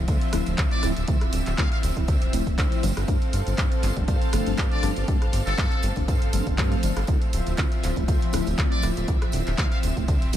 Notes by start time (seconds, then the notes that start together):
Already playing: F3 C4 E5
0.08 D2, kick, closed hi-hat, tambourine
0.21 closed hi-hat, tambourine
0.33 D1 F3 A3 C4 E4, cross-stick, open hi-hat, tambourine
0.46 D1, closed hi-hat, tambourine
0.58 D2, kick, clap, closed hi-hat, tambourine
0.71 D5, closed hi-hat, tambourine
0.83 D1 F3 A3 C4 E4, cross-stick, open hi-hat, tambourine
0.96 D1, closed hi-hat, tambourine
1.08 D2 F3 A3 C4 E4, kick, closed hi-hat, tambourine
1.21 D1, cross-stick, closed hi-hat, tambourine
1.33 D1, open hi-hat, tambourine
1.46 D1, clap, closed hi-hat, tambourine
1.58 D2 F3 A3 C4 E4 F5, kick, clap, closed hi-hat, tambourine
1.72 F5, closed hi-hat, tambourine
1.83 D1, open hi-hat, tambourine
1.97 D1 F3 A3 C4 E4, kick, closed hi-hat
2.08 D2, kick, closed hi-hat, tambourine
2.22 D1, closed hi-hat, tambourine
2.33 D1 F3 A3 C4 E4, open hi-hat, tambourine
2.47 D1, kick, closed hi-hat, tambourine
2.58 D2, kick, clap, closed hi-hat, tambourine
2.72 closed hi-hat, tambourine
2.83 G1 F3 A3 C4 D4 A4 F5, open hi-hat, tambourine
2.97 G1, cross-stick, closed hi-hat, tambourine
3.08 G2 F3 A3 C4 D4, kick, closed hi-hat, tambourine
3.22 closed hi-hat, tambourine
3.33 G1, open hi-hat, tambourine
3.47 G1, closed hi-hat, tambourine
3.58 G2 F3 A3 C4 D4, kick, clap, closed hi-hat
3.72 closed hi-hat, tambourine
3.83 G1, clap, open hi-hat, tambourine
3.96 G1 F3 A3 C4 D4, kick, closed hi-hat
4.08 G2, kick, closed hi-hat, tambourine
4.22 closed hi-hat, tambourine
4.33 G1 F3 A3 C4 D4, cross-stick, open hi-hat, tambourine
4.46 G1, closed hi-hat, tambourine
4.58 G2, kick, clap, closed hi-hat, tambourine
4.72 D5, closed hi-hat, tambourine
4.83 G1 F3 A3 C4 D4, cross-stick, open hi-hat, tambourine
4.96 G1, closed hi-hat, tambourine
5.08 G2 F3 A3 C4 D4, kick, closed hi-hat, tambourine
5.22 G1, cross-stick, closed hi-hat, tambourine
5.33 G1, open hi-hat, tambourine
5.47 G1 A4, clap, closed hi-hat, tambourine
5.58 G2 F3 A3 C4 D4, kick, clap, closed hi-hat, tambourine
5.71 closed hi-hat, tambourine
5.83 G1, open hi-hat, tambourine
5.96 G1 F3 A3 C4 D4, kick, closed hi-hat, tambourine
6.08 G2, kick, closed hi-hat, tambourine
6.22 G1, closed hi-hat, tambourine
6.33 G1 F3 A3 C4 D4, open hi-hat, tambourine
6.47 G1, kick, closed hi-hat
6.58 G2, kick, clap, closed hi-hat, tambourine
6.72 closed hi-hat, tambourine
6.83 G1 F3 A3 C4 D4, open hi-hat, tambourine
6.96 G1, cross-stick, closed hi-hat, tambourine
7.07 D2 F3 A3 C4 E4 E5, kick, closed hi-hat, tambourine
7.21 closed hi-hat, tambourine
7.33 D1, open hi-hat, tambourine
7.46 D1, closed hi-hat, tambourine
7.57 D2 F3 A3 C4 E4, kick, clap, closed hi-hat, tambourine
7.72 closed hi-hat, tambourine
7.83 D1, clap, open hi-hat, tambourine
7.96 D1 F3 A3 C4 E4, kick, closed hi-hat, tambourine
8.08 D2, kick, closed hi-hat, tambourine
8.21 closed hi-hat, tambourine
8.33 D1 F3 A3 C4 E4, cross-stick, open hi-hat, tambourine
8.47 D1, closed hi-hat, tambourine
8.58 D2, kick, clap, closed hi-hat, tambourine
8.71 D5, closed hi-hat, tambourine
8.82 D1 F3 A3 C4 E4, cross-stick, open hi-hat, tambourine
8.97 D1, closed hi-hat, tambourine
9.08 D2 F3 A3 C4 E4, kick, closed hi-hat, tambourine
9.21 D1, cross-stick, closed hi-hat, tambourine
9.32 D1, open hi-hat, tambourine
9.47 D1, clap, closed hi-hat, tambourine
9.58 D2 F3 A3 C4 E4 F5, kick, clap, closed hi-hat, tambourine
9.72 F5, closed hi-hat, tambourine
9.83 D1, open hi-hat, tambourine
9.97 D1 F3 A3 C4 E4, kick, closed hi-hat, tambourine
10.08 D2, kick, closed hi-hat, tambourine
10.22 D1, closed hi-hat, tambourine
10.33 D1 F3 A3 C4 E4, open hi-hat, tambourine